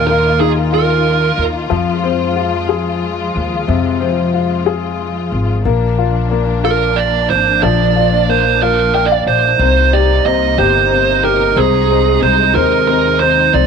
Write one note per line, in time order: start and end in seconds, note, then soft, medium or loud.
0.00 1.33 D#2 medium
0.00 1.67 A#2 soft
0.00 0.07 A#3 soft
0.00 1.66 A#3 medium
0.00 0.40 D#4 soft
0.00 1.66 D#4 soft
0.00 0.73 F4 medium
0.00 5.61 F4 medium
0.07 1.34 A#3 soft
0.07 0.40 A#4 medium
0.40 1.67 D#4 soft
0.40 0.49 G#4 medium
0.73 1.68 F4 soft
0.73 1.43 A#4 medium
1.38 1.69 D#2 medium
1.70 3.31 F2 medium
1.70 3.64 F3 soft
1.70 5.61 F3 medium
1.70 5.61 G#3 soft
2.04 3.31 C4 soft
2.36 3.64 F4 soft
2.69 3.97 G#4 soft
3.36 3.66 D#2 medium
3.68 5.29 F2 medium
3.68 5.61 C3 soft
4.01 5.28 C4 soft
4.34 5.61 F4 soft
4.66 5.62 G#4 soft
5.32 5.63 G#1 medium
5.65 7.26 A#1 medium
5.65 9.56 F3 medium
5.65 6.30 A#3 medium
5.65 9.56 A#3 soft
5.65 9.56 D4 medium
5.98 6.62 F4 soft
6.31 7.59 A#3 soft
6.64 7.92 F4 soft
6.64 6.98 A#4 medium
6.96 7.30 D5 medium
7.30 7.61 G#1 medium
7.30 7.63 C5 medium
7.63 9.23 A#1 medium
7.63 9.56 F3 soft
7.63 9.23 D5 medium
7.96 8.61 F4 soft
8.29 9.56 A#3 soft
8.29 8.60 C5 medium
8.62 9.57 F4 soft
8.62 8.94 A#4 medium
8.95 9.03 A#4 medium
8.95 9.10 G5 soft
9.12 9.27 F5 soft
9.26 9.58 A#1 medium
9.26 9.95 C5 medium
9.26 9.58 D5 soft
9.59 10.21 C2 medium
9.59 13.50 C3 medium
9.59 11.55 A#3 medium
9.59 10.24 C4 medium
9.59 13.67 D#4 medium
9.93 10.57 G4 soft
9.93 10.26 D5 medium
10.25 10.56 C2 medium
10.25 10.89 C4 soft
10.25 10.56 D#5 medium
10.58 11.53 G1 medium
10.58 11.22 G4 soft
10.58 11.24 C5 medium
10.91 11.55 C4 soft
11.24 11.56 G4 soft
11.24 11.58 A#4 medium
11.56 12.18 C2 medium
11.56 13.52 G#3 medium
11.56 11.88 C4 medium
11.56 12.19 G#4 medium
11.90 12.21 C4 soft
12.22 12.53 C2 medium
12.22 12.53 C4 soft
12.22 12.55 C5 medium
12.54 13.50 D#2 medium
12.54 12.86 C4 medium
12.54 12.86 A#4 medium
12.88 13.19 C4 soft
12.88 13.19 A#4 medium
13.20 13.51 C4 soft
13.20 13.51 C5 medium
13.53 13.67 C2 medium
13.53 13.67 F3 medium
13.53 13.67 A3 soft
13.53 13.67 C4 medium
13.53 13.67 D5 medium